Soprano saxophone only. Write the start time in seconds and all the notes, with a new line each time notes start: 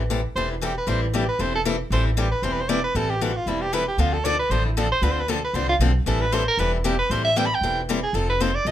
0.36 C5
0.52 E4
0.62 G4
0.78 B4
0.89 C5
1.03 E4
1.15 G4
1.29 B4
1.41 C5
1.55 A4
1.93 C5
2.07 E4
2.18 G4
2.31 B4
2.44 C5
2.53 B4
2.61 C5
2.69 D5
2.84 B4
2.96 A4
3.10 G4
3.22 F#4
3.36 F4
3.48 E4
3.61 G4
3.74 B4
3.88 G4
3.99 F4
4.13 A4
4.25 D5
4.39 B4
4.51 C5
4.66 E4
4.77 A4
4.92 C5
5.03 B4
5.12 C5
5.21 B4
5.29 A4
5.45 B4
5.55 C5
5.69 F4
6.07 A4
6.21 B4
6.33 C5
6.48 A#4
6.59 B4
6.74 E4
6.85 G4
6.99 B4
7.11 C5
7.25 E5
7.37 G5
7.46 B5
7.55 G5
8.03 G#4
8.15 A4
8.30 B4
8.41 C5
8.55 D5
8.67 D#5